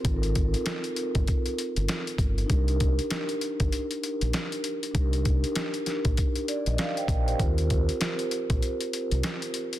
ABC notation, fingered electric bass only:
X:1
M:4/4
L:1/16
Q:"Swing 16ths" 1/4=98
K:Cm
V:1 name="Fingered electric bass" clef=bass
A,,,4 z3 G,,, z3 G,,, z2 G,,,2 | C,,4 z3 G,,, z3 B,,, z4 | C,,4 z3 B,,, z3 B,,, z2 B,,,2 | E,,4 z3 B,,, z3 C,, z4 |]